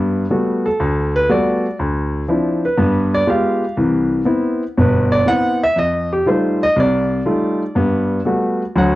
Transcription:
grand piano
Already playing: G2 B3
0.30 G3 A3 B3 F#4
0.66 A4
0.80 D2
1.16 B4
1.29 G3 A3 B3 F#4 D5
1.79 D2
2.28 F3 C4 D4 E4
2.65 B4
2.77 G2 B3
3.14 D5
3.27 G#3 B3 F4 G4 F5
3.77 C2 E3
4.25 B3 C4 E4
4.78 G1 B2 B4
5.12 D5
5.26 B3 C4 E4 F#5
5.64 E5
5.76 F2 D#5
6.13 G4
6.26 G3 A3 D#4 F4 C5
6.63 D#5
6.76 C2 D5
7.26 G3 A3 D#4 F4
7.75 G2 B3
8.25 G3 A3 B3 F#4
8.75 D2 F#3 F#5

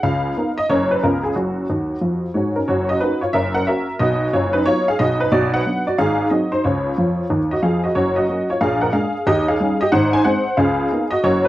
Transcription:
honky-tonk piano
0.03 C#2 C#3 F5
0.37 B3 D#4 A#4
0.58 D#5
0.69 F#1 F#2 A#3 C#4 A#4 C#5
0.91 B4
1.03 C#2 C#3 B3 C#4 F4 A#4
1.23 G#4
1.35 F#1 F#2 F#4
1.70 D#2 D#3
2.01 F2 F3
2.34 G#2 G#3 F#4 C#5
2.56 C#4 A#4
2.68 F#1 F#2 F#4 C#5
2.89 F#4 D#5
3.00 A#3 C#4 D#4 F#4 B4
3.21 F4 C#5
3.33 F#1 F#2 A#4 E5
3.54 A#4 F#5
3.67 A#3 C#4 F#4 A#4 E5
3.99 B1 B2 F#4 D#5
4.33 F#1 F#2 F4 C#5
4.53 D#4 B4
4.66 F#3 B3 D#4 F4 C#5
4.88 G#4 F5
4.99 B1 B2 F#4 D#5
5.20 D#4 B4
5.32 B1 B2 F#4 D5
5.54 B4 F#5
5.66 F#3 B3 D4
5.87 F#4 D5
5.98 G#1 G#2 G#4 F5
6.30 F#3 C4 D#4 F#4 D#5
6.52 D#4 C5
6.64 C#2 C#3 F4 C#5
6.98 F2 F3
7.30 D#2 D#3
7.51 F#4 D#5
7.63 F2 F3 G#4 F5
7.84 F#4 D#5
7.95 F#1 F#2 F#4 C#5
8.16 F#4 D#5
8.29 F#3 A#3 C#4
8.50 F4 C#5
8.61 A#1 A#2 G#4 F5
8.81 A#4 F#5
8.93 G#3 A#3 D4 G#4 F5
9.27 D#2 D#3 G4 D#5
9.48 G#4 F5
9.60 G3 C#4 D#4
9.81 G4 D#5
9.92 G#1 G#2 C5 F#5
10.13 C5 G#5
10.25 G#3 C4 D#4 C5 F#5
10.57 C#2 C#3 G#4 F5
10.91 A#3 B3 D#4
11.11 F#4 D#5
11.24 F#1 F#2 A#3 C#4 F#4 C#5
11.45 B4

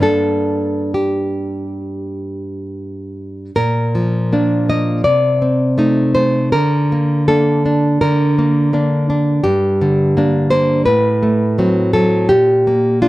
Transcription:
nylon-string guitar
0.00 G2 A#3 D4 A4
0.94 G4
3.56 A#2 A#4
3.95 F3
4.33 A#3 D4
4.69 A#3 D#5
5.04 C3 D5
5.42 C4
5.78 A3 D#4
6.15 A3 C5
6.52 D3 A#4
6.92 A#3
7.28 A#3 D4 A4
7.66 D4
8.01 D3 A#4
8.38 A#3
8.73 A#3 D4
9.10 D4
9.44 G2 G4
9.81 D3
10.17 A#3 D4
10.50 A#3 C5
10.86 A2 B4
11.23 A3
11.59 F#3 C4
11.93 F#3 A4
12.29 A#2 G4
12.67 A#3
13.02 G3 D4 F4

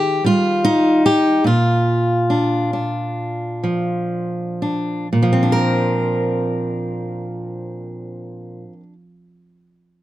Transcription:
steel-string acoustic guitar
Already playing: D#3 G4
0.24 G3 F4
0.65 D#4
1.06 G4
1.44 A#2 F4
2.30 D4
2.73 D4
3.64 F3
4.62 D4
5.13 A#2
5.23 F3
5.33 C4
5.43 D4
5.52 A#4

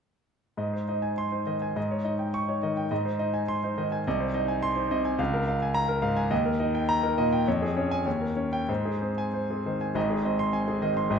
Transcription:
grand piano
0.57 G#2 D#5
0.73 C5
0.88 D#4 D#5
1.02 G#5
1.18 C6
1.32 D#4 C5
1.47 D#3 D#5
1.62 G#5
1.76 G#2 D#5
1.91 C#5
2.04 D#4 D#5
2.19 G5
2.34 C#6
2.48 D#4 C#5
2.63 D#3 D#5
2.77 G5
2.91 G#2 D#5
3.05 C5
3.19 D#4 D#5
3.34 G#5
3.48 C6
3.64 D#4 C5
3.78 D#3 D#5
3.92 G#5
4.07 C2 D#5
4.20 C5
4.34 D#4 D#5
4.48 G#5
4.63 C6
4.76 D#4 C5
4.91 C3 D#5
5.05 G#5
5.18 C#2 F5
5.34 A#4
5.48 F5
5.62 G#5
5.74 A#5
5.89 A#4
6.02 G#2 F5
6.16 G#5
6.31 D#2 D#5
6.46 A#4
6.60 D#4 D#5
6.75 G5
6.89 A#5
7.03 D#4 A#4
7.18 A#2 D#5
7.33 G5
7.47 F2 C#5
7.62 G#4
7.76 C#4 C#5
7.91 G#5
8.06 D#2 C#5
8.21 A#4
8.36 C#4 C#5
8.53 G5
8.69 G#2 C5
8.85 G#4
9.02 C4 C5
9.18 G#5
9.34 C5
9.51 C4 G#4
9.66 D#3 C5
9.81 G#5
9.95 G#1 G#2 D#5
10.10 G#4
10.25 C4 D#5
10.39 C6
10.53 G#5
10.68 C4 G#4
10.82 D#3 D#5
10.97 C6
11.10 G#1 G#2 D#5

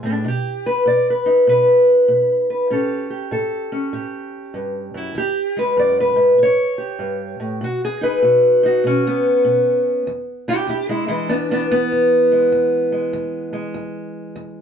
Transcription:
steel-string acoustic guitar
Already playing: G#3 G#4
0.03 A2 D4
0.25 B2 G4
0.66 B4
0.86 B2 D5
1.10 B4
1.26 D#4
1.47 B2 B4
2.08 B2
2.50 B4
2.70 A2 C#4 G4 A4
3.10 G4
3.31 A2 A4
3.72 C#4
3.93 A2 G4
4.54 G2
4.94 F#2 E4
5.15 E2 G4
5.57 G#3 B4
5.77 F#2 D5
6.00 B4
6.16 G#2
6.38 A2
6.43 C#5
6.78 G4
6.99 G2
7.40 A2
7.61 B2 F#4
7.85 G#4
8.01 D#4 B4
8.23 B2 F#4
8.63 D#4 F#4
8.84 B2 C#4
9.07 B3
9.45 B2
10.07 E2
10.48 D4 E4 G4
10.67 E2 E4 G4
10.89 G#3 E4
11.08 E3 G#3 E4
11.29 E2 B3 D4
11.51 B3 D4
11.71 B3
11.92 E2
12.32 G#3
12.52 E2
12.92 G#3
13.13 E2
13.53 G#3
13.74 E2
14.36 E2

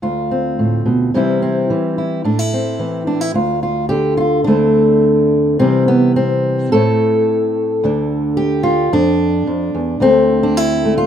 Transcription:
steel-string acoustic guitar
0.02 D2 F4
0.31 C4
0.59 A2
0.86 B2
1.14 C3 E3 G3 C4 E4
1.42 C4
1.70 E3
1.98 E4
2.24 A2 D4
2.39 E4
2.54 C4
2.79 E3
3.07 D4
3.21 E4
3.34 D2 F4
3.63 F4
3.89 D3 G4
4.17 F4
4.44 D2 D3 A3 C4 D4
5.59 C3 E3 G3 C4
5.88 B3
6.16 C4
6.72 A2 A3 C4 E4 A4
7.83 D2 D3 D4
8.37 G4
8.63 F4
8.93 F2 D4
9.47 F2
9.74 E2
10.00 D2 D3 A3 C4
10.43 D4
10.57 E4
10.85 A3
10.98 F4

